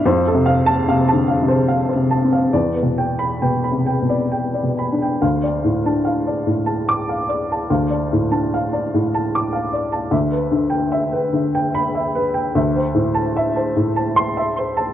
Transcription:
<<
  \new Staff \with { instrumentName = "Upright piano" } { \time 3/4 \key d \dorian \tempo 4 = 73 << { r8. a''8 r4. r16 | r8. b''8 r4. r16 | r2 d'''8 r8 | r2. |
r2 b''8 r8 | r2 c'''8 r8 | } \\ { c''16 a'16 f''8 f''16 a''16 f''16 c''16 f''16 c''16 a''16 f''16 | d''16 b'16 g''8 g''16 b''16 g''16 d''16 g''16 d''16 b''16 g''16 | f''16 d''16 a,16 a''16 f''16 d''16 a,16 a''8 f''16 d''16 a''16 | f''16 d''16 a,16 a''16 f''16 d''16 a,16 a''16 d'''16 f''16 d''16 a''16 |
e''16 b'16 d16 g''16 e''16 b'16 d16 g''8 e''16 b'16 g''16 | e''16 c''16 a,16 a''16 e''16 c''16 a,16 a''8 e''16 c''16 a''16 | } >> }
  \new Staff \with { instrumentName = "Upright piano" } { \clef bass \time 3/4 \key d \dorian \tuplet 3/2 { f,8 c4 c8 d8 c8~ c8 c8 c'8 } | \tuplet 3/2 { e,8 b,4 b,8 c8 b,8~ b,8 b,8 d'8 } | d,8. d'8 r4. r16 | d,8. d'8 r4. r16 |
d,2. | d,2. | }
>>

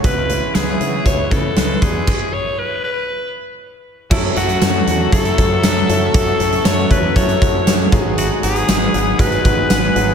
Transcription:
<<
  \new Staff \with { instrumentName = "Analog synth pad" } { \time 4/4 \key e \mixolydian \tempo 4 = 118 << { <cis e'>2.~ <cis e'>8 r8 | r1 | \key fis \dorian <a' cis'''>1~ | <a' cis'''>2.~ <a' cis'''>8 <b' dis'''>8~ |
<b' dis'''>1 | } \\ { <e b>1 | r1 | <e'' fis''>1~ | <e'' fis''>2.~ <e'' fis''>8 <fis'' gis''>8~ |
<fis'' gis''>1 | } >> }
  \new Staff \with { instrumentName = "Alto saxophone" } { \time 4/4 \key e \mixolydian b'4 gis'4 cis''8 a'4 gis'8~ | gis'8 cis''8 b'8 b'4 r4. | \key fis \dorian e'8 fis'4. a'2 | a'4 cis''8 b'8 cis''4. r8 |
fis'8 gis'4. b'2 | }
  \new Staff \with { instrumentName = "Grand piano" } { \time 4/4 \key e \mixolydian <gis cis' e' b'>8 <gis cis' e' b'>8 <gis cis' e' b'>8 <gis cis' e' b'>8 <gis cis' e' b'>8 <gis cis' e' b'>8 <gis cis' e' b'>8 <gis d' e'>8 | r1 | \key fis \dorian <fis a cis' e' a'>8 <fis a cis' e' a'>8 <fis a cis' e' a'>8 <fis a cis' e' a'>8 <fis a cis' e' a'>8 <fis a cis' e' a'>8 <fis a cis' e' a'>8 <fis a cis' e' a'>8 | <fis a cis' e' a'>8 <fis a cis' e' a'>8 <fis a cis' e' a'>8 <fis a cis' e' a'>8 <fis a cis' e' a'>8 <fis a cis' e' a'>8 <fis a cis' e' gis'>8 <fis gis b dis' gis'>8~ |
<fis gis b dis' gis'>8 <fis gis b dis' fis'>8 <fis gis b dis' gis'>8 <fis gis b dis' gis'>8 <fis gis b dis' gis'>8 <fis gis b dis' gis'>8 <fis gis b dis' gis'>8 <fis gis b dis' gis'>8 | }
  \new Staff \with { instrumentName = "Overdriven electric guitar" } { \clef bass \time 4/4 \key e \mixolydian r1 | r1 | \key fis \dorian <fis, cis fis>8 <cis fis>4. <fis, cis fis>2 | <fis, cis fis>8 <cis fis>4. <fis, cis fis>4. <gis, dis gis>8~ |
<gis, dis gis>8 <dis gis>4. <gis, dis gis>2 | }
  \new Staff \with { instrumentName = "Fretless electric bass" } { \clef bass \time 4/4 \key e \mixolydian cis,4 cis,8 cis8 cis,8 cis8 cis,8 e,8 | r1 | \key fis \dorian fis,8 fis,8 fis,8 e,8 fis,8 fis,8 fis,8 fis,8 | fis,8 fis,8 fis,8 e,8 fis,8 fis,8 fis,8 gis,,8~ |
gis,,8 gis,,8 gis,,8 gis,,8 gis,,8 gis,,8 gis,,8 gis,,8 | }
  \new DrumStaff \with { instrumentName = "Drums" } \drummode { \time 4/4 <hh bd>8 hh8 <hh sn>8 hh8 <hh bd>8 <hh bd>8 <hh sn>8 <hh bd>8 | <cymc bd>4 r4 r4 r4 | <cymc bd>8 hh16 hh16 <hh sn tamb>8 hh8 <hh bd>16 hh16 <hh bd>8 <hh sn tamb>8 hh8 | <hh bd>8 hh16 hh16 <hh sn tamb>8 <hh bd>8 <hh bd>16 hh16 <hh bd>8 <hh sn tamb>8 <hh bd>8 |
hh8 hh16 hh16 <hh sn tamb>8 hh8 <hh bd>16 hh16 <hh bd>8 <hh sn tamb>8 hh8 | }
>>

